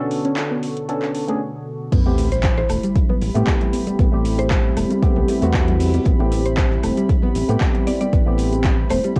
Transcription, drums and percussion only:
0.11 open hi-hat
0.25 closed hi-hat
0.37 clap, closed hi-hat
0.63 open hi-hat
0.77 closed hi-hat
0.89 closed hi-hat
1.02 clap
1.15 open hi-hat
1.28 closed hi-hat
1.92 kick, closed hi-hat, crash, shaker
2.06 high conga
2.18 snare, closed hi-hat, open hi-hat, high bongo, shaker
2.32 closed hi-hat, shaker
2.43 kick, snare, clap, closed hi-hat, shaker
2.57 closed hi-hat, high bongo
2.69 closed hi-hat, open hi-hat, high woodblock, shaker
2.84 closed hi-hat, shaker
2.96 kick, closed hi-hat, shaker
3.09 high bongo, low conga
3.21 closed hi-hat, open hi-hat, shaker
3.35 closed hi-hat, shaker
3.47 kick, snare, clap, closed hi-hat, high bongo, shaker
3.60 closed hi-hat, low conga
3.73 closed hi-hat, open hi-hat, high conga, shaker
3.87 closed hi-hat, shaker
3.99 kick, closed hi-hat, high bongo, shaker
4.25 closed hi-hat, open hi-hat, shaker
4.38 closed hi-hat, high bongo, shaker
4.50 kick, snare, clap, closed hi-hat, shaker
4.77 closed hi-hat, open hi-hat, high conga, high woodblock, shaker
4.90 closed hi-hat, high bongo, shaker
5.03 kick, closed hi-hat, shaker
5.16 low conga
5.28 closed hi-hat, open hi-hat, high bongo, shaker
5.42 closed hi-hat, high conga, shaker
5.54 kick, snare, clap, closed hi-hat, shaker
5.68 closed hi-hat, low conga
5.79 snare, open hi-hat, high bongo, shaker
5.94 closed hi-hat, high conga, shaker
6.05 kick, closed hi-hat, shaker
6.20 high bongo, high conga
6.32 snare, closed hi-hat, open hi-hat, shaker
6.46 closed hi-hat, shaker
6.57 kick, snare, clap, closed hi-hat, shaker
6.71 closed hi-hat, high bongo
6.83 closed hi-hat, open hi-hat, high woodblock, shaker
6.97 closed hi-hat, shaker
7.09 kick, closed hi-hat, high bongo, shaker
7.22 low conga
7.35 closed hi-hat, open hi-hat, shaker
7.49 closed hi-hat, shaker
7.60 kick, snare, clap, closed hi-hat, high bongo, shaker
7.75 closed hi-hat, low conga
7.87 closed hi-hat, open hi-hat, high conga, shaker
8.01 closed hi-hat, high bongo, shaker
8.13 kick, closed hi-hat, shaker
8.38 closed hi-hat, open hi-hat, shaker
8.53 closed hi-hat, high bongo, shaker
8.64 kick, snare, clap, closed hi-hat, shaker
8.90 closed hi-hat, open hi-hat, high bongo, high conga, high woodblock, shaker
9.04 closed hi-hat, shaker
9.16 kick, closed hi-hat

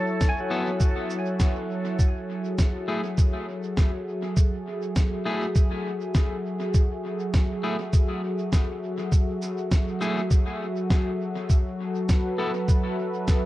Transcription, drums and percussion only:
0.21 kick, snare, cabasa
0.80 kick, cabasa
1.10 cabasa
1.40 kick, snare, cabasa
1.99 kick, cabasa
2.59 kick, snare, cabasa
3.18 kick, cabasa
3.77 kick, snare, cabasa
4.37 kick, cabasa
4.96 kick, snare, cabasa
5.55 kick, cabasa
6.15 kick, snare, cabasa
6.74 kick, cabasa
7.34 kick, snare, cabasa
7.93 kick, cabasa
8.53 kick, snare, cabasa
9.12 kick, cabasa
9.42 cabasa
9.72 kick, snare, cabasa
10.01 cabasa
10.31 kick, cabasa
10.90 kick, snare, cabasa
11.50 kick, cabasa
12.09 kick, snare, cabasa
12.68 kick, cabasa
13.28 kick, snare, cabasa

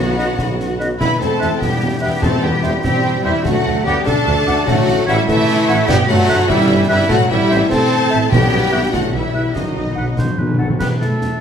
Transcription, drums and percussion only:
0.19 snare
0.39 concert bass drum, snare
0.60 snare
0.80 snare
1.01 concert bass drum, snare, crash
1.21 snare
1.42 snare
1.62 concert bass drum, snare
2.23 concert bass drum, snare
2.63 snare
2.84 concert bass drum, snare
3.45 concert bass drum, snare
4.07 concert bass drum, snare
4.48 snare
4.68 concert bass drum, snare
4.88 snare
5.08 snare
5.28 concert bass drum, snare
5.48 snare
5.69 snare
5.89 concert bass drum, snare, crash
6.09 snare
6.30 snare
6.50 concert bass drum, snare
7.10 concert bass drum, snare
7.51 snare
7.72 concert bass drum, snare
8.32 concert bass drum, snare
8.94 concert bass drum, snare
9.56 concert bass drum, snare
10.19 concert bass drum, snare
10.80 concert bass drum, snare, crash
11.02 snare
11.21 snare

